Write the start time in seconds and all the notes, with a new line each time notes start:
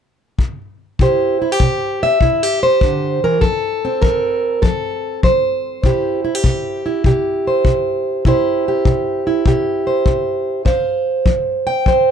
0.39 kick
0.99 C3 E4 G4 C5, kick
1.42 E4
1.52 G4
1.60 C3, kick
2.03 E5
2.21 C3 E4, kick
2.43 G4
2.63 C5
2.81 D3, kick
3.24 E3 A#4
3.41 F3 A4, kick
3.85 C4
4.01 F3 A#4, kick
4.62 F3 A4, kick
5.23 F3 C5, kick
5.84 C3 E4 G4, kick
6.25 E4
6.35 G4
6.44 C3, kick
6.86 E4
7.04 C3 G4, kick
7.47 C5
7.65 C3, kick
8.25 C3 E4 G4 C5, kick
8.68 G4
8.85 C3, kick
9.27 E4
9.46 C3 G4, kick
9.87 C5
10.06 C3, kick
10.65 F3 C5 F5, kick
11.26 F3, kick
11.67 G5
11.86 F3 C5, kick